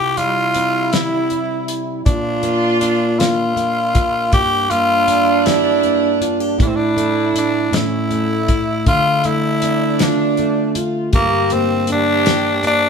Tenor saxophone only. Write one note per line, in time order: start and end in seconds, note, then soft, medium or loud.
0.00 0.19 G4 loud
0.17 0.94 F4 loud
0.93 1.69 E4 loud
2.06 2.78 D4 medium
2.80 3.20 D4 medium
3.19 4.33 F4 loud
4.33 4.72 G4 loud
4.70 5.48 F4 loud
5.46 6.22 E4 medium
6.62 6.69 D4 medium
6.67 6.77 C4 medium
6.76 7.37 D4 loud
7.38 7.77 D4 medium
7.75 8.87 E4 loud
8.88 9.27 F4 loud
9.25 10.04 E4 loud
10.02 10.77 D4 medium
11.15 11.54 A#3 loud
11.52 11.89 C4 medium
11.92 12.62 D4 loud
12.67 12.89 D4 loud